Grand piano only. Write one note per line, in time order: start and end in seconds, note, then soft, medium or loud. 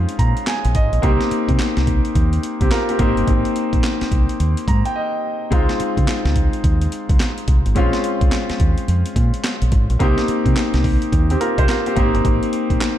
0.00 0.99 G#3 medium
0.00 0.99 C4 medium
0.00 0.99 C#4 medium
0.00 1.00 F4 medium
0.19 0.45 A#5 medium
0.47 0.73 G#5 medium
0.75 1.01 D#5 medium
1.02 2.95 A#3 medium
1.02 2.13 C4 medium
1.02 2.13 D#4 medium
1.02 2.14 G4 medium
2.62 2.71 C4 medium
2.62 2.71 G4 medium
2.72 2.89 F4 medium
2.72 2.88 A#4 medium
2.89 2.98 C4 medium
2.89 3.00 G4 medium
2.99 5.19 A#3 medium
2.99 5.20 C4 medium
2.99 5.20 D#4 medium
2.99 5.21 G4 medium
4.68 4.84 A#5 medium
4.86 4.95 G5 medium
4.96 5.48 D#5 medium
5.51 7.71 G#3 medium
5.51 7.72 C4 medium
5.51 7.72 D#4 medium
5.51 7.73 F4 medium
7.75 9.96 G#3 medium
7.75 9.96 C4 medium
7.75 9.97 C#4 medium
7.75 9.97 F4 medium
9.99 11.92 A#3 medium
9.99 11.10 C4 medium
9.99 11.11 D#4 medium
9.99 11.11 G4 medium
11.31 11.41 C4 medium
11.31 11.40 G4 medium
11.41 11.58 F4 medium
11.41 11.57 A#4 medium
11.59 11.69 G4 medium
11.59 11.68 C5 medium
11.69 11.86 F4 medium
11.69 11.85 A#4 medium
11.87 11.95 C4 medium
11.87 11.97 G4 medium
11.96 12.98 A#3 medium
11.96 12.98 C4 medium
11.96 12.98 D#4 medium
11.96 12.98 G4 medium